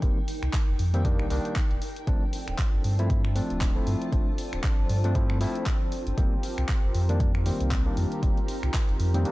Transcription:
Already playing: D#4 A#4 G5
0.02 F1 D#3 G3 A#3 C4, kick, closed hi-hat
0.28 open hi-hat
0.43 C2, finger snap, closed hi-hat
0.54 kick, clap, closed hi-hat
0.68 F1
0.79 F2, open hi-hat
0.94 D#3 G3 A#3 C4, closed hi-hat
1.04 D#3 G3 A#3 D4, kick, closed hi-hat
1.20 A#1, finger snap
1.30 C2 D#3 G3 A#3 D4, open hi-hat
1.45 closed hi-hat
1.56 kick, clap, closed hi-hat
1.71 D#1, closed hi-hat
1.82 open hi-hat
1.96 closed hi-hat
2.07 G1 F3 A3 C4 D4 F4 A4, kick, closed hi-hat
2.33 open hi-hat
2.48 D1 C5, finger snap, closed hi-hat
2.59 kick, clap, closed hi-hat
2.73 G1 A5
2.84 G2, open hi-hat
2.99 F3 A3 C4 E4, closed hi-hat
3.10 kick, closed hi-hat
3.25 finger snap
3.35 F3 A3 C4 D4, open hi-hat
3.50 D1, closed hi-hat
3.61 kick, clap, closed hi-hat
3.76 F3 A3 C4 E4
3.87 G2, open hi-hat
4.02 closed hi-hat
4.12 G1 F3 A3 C4 D4, kick, closed hi-hat
4.38 open hi-hat
4.53 D1, finger snap, closed hi-hat
4.64 kick, clap, closed hi-hat
4.79 G1
4.89 G2, open hi-hat
5.04 F3 A3 C4 D4, closed hi-hat
5.15 F3 A3 C4 E4, kick, closed hi-hat
5.30 finger snap
5.40 F3 A3 C4 E4, open hi-hat
5.55 closed hi-hat
5.66 kick, clap, closed hi-hat
5.92 open hi-hat
6.07 G1, closed hi-hat
6.17 F1 D#3 G3 A#3 C4 F4 G4 A#4, kick, closed hi-hat
6.26 D#4
6.43 open hi-hat
6.58 C2, finger snap, closed hi-hat
6.69 kick, clap, closed hi-hat
6.84 F1 A#5
6.95 F2, open hi-hat
7.09 D#3 G3 A#3 D4, closed hi-hat
7.20 kick, closed hi-hat
7.35 finger snap
7.45 D#3 G3 A#3 C4, open hi-hat
7.61 C2, closed hi-hat
7.71 kick, clap, closed hi-hat
7.86 D#3 G3 A#3 D4
7.97 F2, open hi-hat
8.12 closed hi-hat
8.22 F1 D#3 G3 A#3 C4, kick, closed hi-hat
8.37 closed hi-hat
8.48 open hi-hat
8.63 C2, finger snap, closed hi-hat
8.74 kick, clap, closed hi-hat
8.89 F1, closed hi-hat
9.00 F2, open hi-hat
9.14 D#3 G3 A#3 C4, closed hi-hat
9.25 D#3 G3 A#3 D4, closed hi-hat

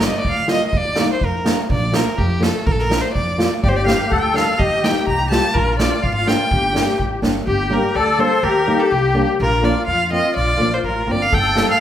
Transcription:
0.00 G3 A#3 D4 D5, snare
0.07 D#5
0.17 D5
0.25 D2 F5, kick
0.48 G3 A#3 F4 D#5, snare
0.68 D#5
0.73 D#2, kick
0.77 D5
0.95 G3 A#3 D#4, snare
1.13 C5
1.21 F2 A#4, kick
1.44 G3 A#3 D4, snare
1.70 A#1 D5, kick
1.92 F3 A#3 D4 A#4, snare
2.18 F2 G4, kick
2.40 F3 A#3 D4 A4, snare
2.66 A#1 A#4, kick
2.72 A4
2.79 A#4, snare
2.89 F3 A#3 D4, snare
3.01 C5
3.13 F2 D5, kick
3.38 F3 A#3 F4, snare
3.63 G1 G4 D5, kick
3.69 C5
3.76 D5
3.85 G3 A#3 D4 F5, snare
4.10 D2 A4 G5, kick
4.34 G3 A#3 D4 F5, snare
4.59 D#2 G4 D#5, kick
4.83 G3 A#3 D#4 G5, snare
4.96 snare
5.07 C2 A#5, kick
5.30 G3 A#3 F4 A5, snare
5.54 A#1 F4 A#4, kick
5.79 F3 A#3 D4 D5, snare
6.03 G#1 F5, kick
6.15 F5
6.26 F3 A#3 D4 G5, snare
6.51 G1 G4, kick
6.74 G3 A#3 D4, snare
6.88 snare
6.99 A1, kick
7.22 G1 G3 A#3 D4, snare
7.47 G1 G4
7.70 G3 A#3 D4 A#4
7.94 D2 A4 D5
8.18 G3 A#3 D4 C5
8.43 D#2 G4 A#4
8.67 G3 A#3 D#4
8.80 A4
8.91 C2 G4
9.14 G3 A#3 D4
9.40 A#1 F4 A#4
9.62 F3 A#3 D4 D5
9.87 F2 F5
10.11 F3 A#3 C4 D#5
10.36 A#1 D5
10.57 A#1 F3 A#3 D4
10.74 C5
10.83 A1 A#4
11.06 G1 F3 A#3 C4
11.11 D5
11.22 F5
11.32 G1 A4 G5, kick
11.55 G3 A#3 D4, snare
11.72 F5

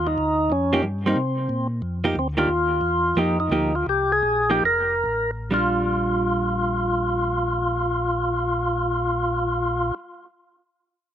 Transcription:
Already playing: D#2
0.07 D#4
0.18 D2
0.50 F2 C#4
0.73 F3 A#3 D#4 G4
0.83 G2
1.06 G3 A#3 C4 D#4
1.16 C3
1.49 A#2
1.82 F2
2.04 F3 A#3 D#4 G4
2.16 D2 C4
2.37 D#3 A#3 D4 F4 G4
2.48 D#2
2.81 E2
3.16 F2 F3 A#3 D#4 G4
3.40 D#4
3.50 D2 F3 A#3 D#4 G4
3.75 F4
3.86 C2 G4
4.12 G#4
4.23 A#1
4.50 F3 A#3 D#4 G4
4.63 F1 A#4
5.06 A1
5.51 A#1 G3 D4 F4

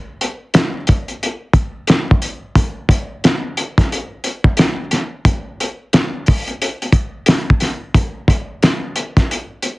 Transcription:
0.21 closed hi-hat
0.54 snare, closed hi-hat
0.87 kick, closed hi-hat
1.08 closed hi-hat
1.23 closed hi-hat
1.53 kick, closed hi-hat
1.87 snare, closed hi-hat
2.11 kick
2.22 closed hi-hat
2.55 kick, closed hi-hat
2.89 kick, closed hi-hat
3.24 snare, closed hi-hat
3.57 closed hi-hat
3.78 kick, snare, closed hi-hat
3.92 closed hi-hat
4.24 closed hi-hat
4.44 kick
4.57 snare, closed hi-hat
4.91 snare, closed hi-hat
5.25 kick, closed hi-hat
5.60 closed hi-hat
5.93 snare, closed hi-hat
6.26 kick, open hi-hat
6.48 closed hi-hat
6.62 closed hi-hat
6.82 closed hi-hat
6.92 kick, closed hi-hat
7.26 snare, closed hi-hat
7.50 kick
7.60 snare, closed hi-hat
7.94 kick, closed hi-hat
8.28 kick, closed hi-hat
8.63 snare, closed hi-hat
8.96 closed hi-hat
9.17 kick, snare, closed hi-hat
9.31 closed hi-hat
9.62 closed hi-hat

